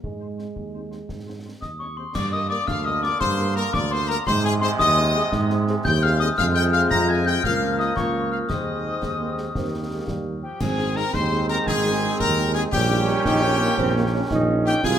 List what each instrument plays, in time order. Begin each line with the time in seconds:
0.03 tuba G#2, euphonium G#3, concert bass drum
0.20 french horn section G#3 C4 D#4, trumpet section C5
0.38 french horn section G#3 C4 D#4, trumpet section C5, snare
0.56 tuba D#2, concert bass drum
0.74 french horn section G#3 C4 D#4, trumpet section C5
0.90 french horn section G#3 C4 D#4, trumpet section C5, snare
1.09 tuba G#2, concert bass drum, snare
1.26 french horn section G#3 C4 D#4, trumpet section C5
1.44 french horn section G#3 C4 D#4, trumpet section C5
1.61 tuba D#2, trumpet section D#5, piccolo D#6, glockenspiel D#6, concert bass drum, snare
1.79 french horn section G#3 C4 D#4, trumpet section C5 C#5, piccolo C#6, glockenspiel C#6
1.96 french horn section G#3 C4 D#4, trumpet section C5, glockenspiel C6, piccolo C6
2.14 tuba G2, trombone section D3 A#3, trumpet section D5, glockenspiel D6, piccolo D6, concert bass drum, snare, crash
2.32 french horn section G3 A#3 A#4, trumpet section D#5, piccolo D#6, glockenspiel D#6
2.50 french horn section G3 A#3 A#4, trumpet section D5, glockenspiel D6, piccolo D6
2.67 tuba D2, trumpet section F5, glockenspiel F6, piccolo F6, concert bass drum, snare
2.85 french horn section G3 A#3 A#4, trumpet section D#5, piccolo D#6, glockenspiel D#6
3.03 french horn section G3 A#3 A#4, trumpet section D5, glockenspiel D6, piccolo D6, snare
3.20 tuba G2, trumpet section C5, piccolo C6, glockenspiel C6, concert bass drum, snare
3.38 french horn section G3 A#3 A#4, snare
3.56 french horn section G3 A#3 A#4, trumpet section A#4, piccolo A#5, glockenspiel A#5, snare
3.73 tuba D2, trumpet section D5, piccolo D6, glockenspiel D6, concert bass drum, snare
3.91 french horn section G3 A#3 A#4, trumpet section C5, piccolo C6, glockenspiel C6
4.08 french horn section G3 A#3 A#4, trumpet section A#4, piccolo A#5, glockenspiel A#5
4.26 tuba G#2, trombone section C3 G#3, trumpet section C5, piccolo C6, glockenspiel C6, concert bass drum, snare, crash
4.43 french horn section C4 G#4, trumpet section G#4, piccolo G#5, glockenspiel G#5
4.61 french horn section C4 G#4, trumpet section C5, piccolo C6, glockenspiel C6
4.79 tuba D#2, trumpet section D#5, piccolo D#6, glockenspiel D#6, concert bass drum, snare
4.97 french horn section C4 G#4
5.15 french horn section C4 G#4, snare
5.32 tuba G#2, concert bass drum, snare
5.50 french horn section C4 G#4, snare
5.67 french horn section C4 G#4, snare
5.84 tuba D#2, trumpet section G5, piccolo G6, glockenspiel G6, concert bass drum, snare
6.02 french horn section C4 G#4, trumpet section F5, glockenspiel F6, piccolo F6
6.19 french horn section C4 G#4, trumpet section D#5, piccolo D#6, glockenspiel D#6
6.38 tuba F2, trombone section C3 G#3, french horn section C4 F4 G#4, trumpet section F5, piccolo F6, glockenspiel F6, concert bass drum, snare, crash
6.55 trumpet section G5, glockenspiel G6, piccolo G6
6.73 trumpet section F5, piccolo F6, glockenspiel F6
6.90 tuba F2, trumpet section A#5, piccolo A#6, glockenspiel A#6, concert bass drum, snare
7.08 trumpet section G#5, piccolo G#6, glockenspiel G#6
7.26 trumpet section G5, glockenspiel G6, piccolo G6, snare
7.43 tuba C#2, trombone section F3 A#3, french horn section A#3 F4 A#4, trumpet section F5, glockenspiel F6, piccolo F6, concert bass drum, snare
7.62 snare
7.79 trumpet section D#5, glockenspiel D#6, piccolo D#6, snare
7.96 tuba C#2, french horn section A#3 F4 A#4, trumpet section C#5, glockenspiel C#6, piccolo C#6, concert bass drum, snare
8.32 trumpet section F5, glockenspiel F6, piccolo F6
8.49 tuba D#2, trombone section G#3 C4, french horn section D#4 G#4 C5, trumpet section D#5, glockenspiel D#6, piccolo D#6, concert bass drum, snare, crash
9.02 tuba D#2, euphonium G#3, concert bass drum, snare
9.20 euphonium A#3
9.37 euphonium G#3, snare
9.55 tuba D#2, trombone section G3 A#3, euphonium C4, french horn section D#4 G4 A#4, concert bass drum, snare
9.72 euphonium A#3
9.90 euphonium G#3
10.07 tuba D#2, euphonium G3, concert bass drum, snare
10.43 euphonium F3, trumpet section G4, piccolo G5
10.60 tuba G#1, trombone section D#3 C4, euphonium C4, trumpet section G#4, piccolo G#5, concert bass drum, snare, crash
10.78 french horn section C4 D#4 G#4, snare
10.96 french horn section C4 D#4 G#4, trumpet section A#4, piccolo A#5, snare
11.13 tuba D#2, euphonium G#3, trumpet section C5, piccolo C6, concert bass drum, snare
11.31 french horn section C4 D#4 G#4
11.49 french horn section C4 D#4 G#4, trumpet section A#4, piccolo A#5, snare
11.66 tuba G#1, trumpet section G#4, piccolo G#5, concert bass drum, snare
11.84 french horn section C4 D#4 G#4
12.02 french horn section C4 D#4 G#4
12.19 tuba D#2, trumpet section A#4, piccolo A#5, concert bass drum, snare
12.37 french horn section C4 D#4 G#4
12.55 french horn section C4 D#4 G#4, trumpet section G#4, piccolo G#5
12.71 tuba A#1, trombone section D#3 C#4, euphonium G3, trumpet section G4, piccolo G5, concert bass drum, snare, crash
12.90 french horn section A#3 C#4 D#4, snare
13.07 french horn section A#3 C#4 D#4, snare
13.24 tuba A#1, euphonium D#4, trumpet section G4, piccolo G5, concert bass drum, snare
13.42 french horn section A#3 C#4 D#4, euphonium C#4
13.60 french horn section A#3 C#4 D#4, euphonium A#3, snare
13.78 tuba A#1, euphonium C4, concert bass drum, snare
13.95 french horn section A#3 C#4 D#4, euphonium A#3
14.13 french horn section A#3 C#4 D#4, euphonium C#4
14.31 tuba A#1, euphonium D#4, concert bass drum, snare
14.48 french horn section A#3 C#4 D#4
14.66 french horn section A#3 C#4 D#4, trumpet section G4, piccolo G5
14.83 tuba C2, trombone section D#3 C4, euphonium F4, trumpet section G#4, piccolo G#5, concert bass drum, snare, crash